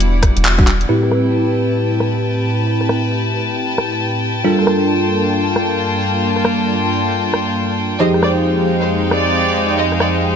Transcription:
Already playing: sub bass E1, analog synth pad G3 B3 D4 F#4, string section G3 E4 D5 F#5
0.00 closed hi-hat
0.23 kick, cross-stick, open hi-hat
0.37 sub bass E1, closed hi-hat
0.45 clap, closed hi-hat
0.58 sub bass D1, tine electric piano G3 D4 F#4, kick
0.67 sub bass E1, clap, open hi-hat
0.81 closed hi-hat
0.89 tine electric piano A2 C4 E4 G4 B4, analog synth pad A2 C4 E4 G4 B4, closed hi-hat
1.03 string section G5, cross-stick
1.11 cross-stick, closed hi-hat
1.27 string section A5
1.34 string section B4, closed hi-hat
1.78 closed hi-hat
2.00 cross-stick
2.14 closed hi-hat
2.23 closed hi-hat
2.67 closed hi-hat
2.81 cross-stick
2.89 cross-stick, closed hi-hat
3.11 closed hi-hat
3.56 closed hi-hat
3.78 cross-stick
3.92 closed hi-hat
4.00 closed hi-hat
4.44 analog synth pad G2 A#3 D4 F4 A5, tine electric piano G3 D4 F4 A4 A#4, string section F4, closed hi-hat
4.59 cross-stick
4.67 cross-stick, closed hi-hat
4.75 string section A#3
4.89 closed hi-hat
5.34 closed hi-hat
5.56 cross-stick
5.70 closed hi-hat
5.78 closed hi-hat
6.22 closed hi-hat
6.36 cross-stick
6.45 cross-stick, closed hi-hat
6.67 closed hi-hat
7.11 closed hi-hat
7.34 cross-stick
7.47 closed hi-hat
7.56 closed hi-hat
8.00 analog synth pad F2 G#3 C4 D#4 G5, tine electric piano F3 D#4 G4 G#4 C5, string section D#4, violin section D#5, closed hi-hat
8.12 string section G#3, cross-stick
8.21 violin section D5, string section F5, cross-stick, closed hi-hat
8.45 closed hi-hat
8.81 violin section C5
8.89 closed hi-hat
9.11 violin section D5, cross-stick
9.25 closed hi-hat
9.34 closed hi-hat
9.78 violin section D#5, closed hi-hat
9.92 cross-stick
10.00 violin section D5, cross-stick, closed hi-hat
10.22 closed hi-hat

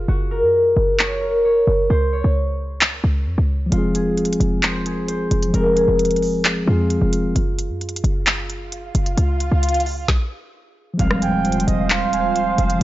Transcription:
Already playing: harp F4 G#4 A#4
0.08 808-style bass F#1, harp F#4
0.31 harp A#4
0.43 808-style bass F#2
0.77 808-style bass F#1
0.99 harp C#5, clap
1.21 harp A#4
1.45 harp C#5
1.67 808-style bass F#1
1.90 808-style bass C#2, harp C5
2.13 harp C#5
2.24 808-style bass C#2
2.81 clap
3.04 808-style bass C#2
3.27 808-style bass F2
3.38 808-style bass C#2
3.66 tine electric piano F3 G#3
3.72 808-style bass F1, tine electric piano C4, harp F4, closed hi-hat
3.78 tine electric piano G#4
3.95 harp G#4, closed hi-hat
4.17 closed hi-hat
4.25 closed hi-hat
4.33 closed hi-hat
4.40 808-style bass F1, closed hi-hat
4.63 harp C5, clap, closed hi-hat
4.86 harp G#4, closed hi-hat
5.08 harp C5, closed hi-hat
5.31 808-style bass F1, closed hi-hat
5.43 closed hi-hat
5.48 tine electric piano F3 G#3
5.54 808-style bass F1, tine electric piano C4, harp A#4, closed hi-hat
5.60 tine electric piano G#4
5.77 harp G#4, closed hi-hat
5.88 808-style bass F1
5.99 closed hi-hat
6.05 closed hi-hat
6.11 closed hi-hat
6.16 closed hi-hat
6.22 open hi-hat
6.45 clap, closed hi-hat
6.65 808-style bass F2, tine electric piano F3 G#3 C4, harp F4
6.70 tine electric piano G#4
6.90 closed hi-hat
7.01 808-style bass F1
7.13 closed hi-hat
7.36 808-style bass F#1, closed hi-hat, swell
7.59 closed hi-hat
7.70 808-style bass F#2
7.81 closed hi-hat
7.89 closed hi-hat
7.96 closed hi-hat
8.04 808-style bass F#1, closed hi-hat
8.26 clap, closed hi-hat
8.50 closed hi-hat
8.72 closed hi-hat
8.95 808-style bass F#1, closed hi-hat
9.06 closed hi-hat
9.17 808-style bass C#2, closed hi-hat
9.40 closed hi-hat
9.52 808-style bass C#2
9.63 closed hi-hat
9.69 closed hi-hat
9.74 closed hi-hat
9.80 closed hi-hat
9.86 open hi-hat
10.08 kick, snare
10.94 tine electric piano F3 G#3
10.99 808-style bass F1, analog synth pad F3 F4 C5 F5, tine electric piano C4, harp F5, closed hi-hat, impact
11.05 tine electric piano G3
11.11 cross-stick
11.22 soft synth lead G5, harp G#5, closed hi-hat
11.45 closed hi-hat
11.52 closed hi-hat
11.60 closed hi-hat
11.67 808-style bass F1, soft synth lead D#5, closed hi-hat
11.90 soft synth lead F5, harp C6, clap, closed hi-hat
12.13 harp G#5, closed hi-hat
12.35 harp C6, closed hi-hat
12.58 808-style bass F1, closed hi-hat
12.70 closed hi-hat
12.76 tine electric piano F3 G#3

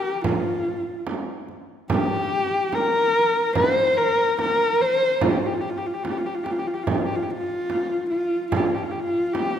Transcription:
Already playing: horsehead fiddle G4
0.24 horsehead fiddle F4, frame drum
0.66 frame drum
1.07 frame drum
1.48 frame drum
1.90 horsehead fiddle G4, frame drum
2.31 frame drum
2.73 horsehead fiddle A#4, frame drum
3.55 horsehead fiddle C5, frame drum
3.97 horsehead fiddle A#4, frame drum
4.39 horsehead fiddle A#4, frame drum
4.80 horsehead fiddle C5, frame drum
5.21 horsehead fiddle F4, frame drum
5.30 horsehead fiddle G4
5.39 horsehead fiddle F4
5.46 horsehead fiddle G4
5.54 horsehead fiddle F4
5.61 horsehead fiddle G4, frame drum
5.69 horsehead fiddle F4
5.77 horsehead fiddle G4
5.86 horsehead fiddle F4
5.94 horsehead fiddle G4
6.03 horsehead fiddle F4, frame drum
6.10 horsehead fiddle G4
6.18 horsehead fiddle F4
6.26 horsehead fiddle G4
6.35 horsehead fiddle F4
6.44 horsehead fiddle G4, frame drum
6.51 horsehead fiddle F4
6.58 horsehead fiddle G4
6.67 horsehead fiddle F4
6.73 horsehead fiddle G4
6.83 horsehead fiddle F4, frame drum
6.90 horsehead fiddle G4
6.98 horsehead fiddle F4
7.05 horsehead fiddle G4
7.15 horsehead fiddle F4
7.23 horsehead fiddle G4
7.29 horsehead fiddle F4, frame drum
7.70 frame drum
8.09 horsehead fiddle F4, frame drum
8.50 horsehead fiddle F4, frame drum
8.57 horsehead fiddle G4
8.65 horsehead fiddle F4
8.74 horsehead fiddle G4
8.83 horsehead fiddle F4
8.91 horsehead fiddle G4
9.00 horsehead fiddle F4
9.15 frame drum
9.33 horsehead fiddle G4, frame drum

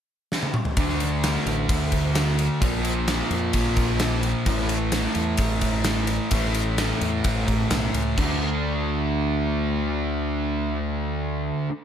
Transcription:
0.32 snare
0.43 high tom
0.54 mid tom
0.65 floor tom
0.77 fingered electric bass D2, distorted electric guitar D3 A3 D4, kick, ride
0.89 snare
1.00 ride
1.24 snare, ride
1.46 fingered electric bass A1, ride
1.69 fingered electric bass D2, kick, ride
1.92 kick, ride
2.15 snare, ride
2.39 ride
2.61 fingered electric bass A#1, distorted electric guitar A#2 F3 A#3, kick, ride
2.85 ride
3.08 snare, ride
3.31 fingered electric bass F2, ride
3.53 fingered electric bass A#1, kick, ride
3.76 kick, ride
4.00 snare, ride
4.23 ride
4.46 fingered electric bass A1, distorted electric guitar A2 E3 A3, kick, ride
4.58 snare
4.69 ride
4.92 snare, ride
5.15 fingered electric bass E2, ride
5.37 fingered electric bass A1, kick, ride
5.61 kick, ride
5.84 snare, ride
6.07 ride
6.31 fingered electric bass A1, distorted electric guitar A2 E3 A3, kick, ride
6.54 ride
6.78 snare, ride
7.01 fingered electric bass E2, ride
7.24 fingered electric bass A1, kick, ride
7.48 fingered electric bass A1, kick, ride
7.71 fingered electric bass B1, snare, ride
7.94 fingered electric bass C#2, ride
8.18 fingered electric bass D2, distorted electric guitar D3 A3, kick, crash
8.22 distorted electric guitar D4

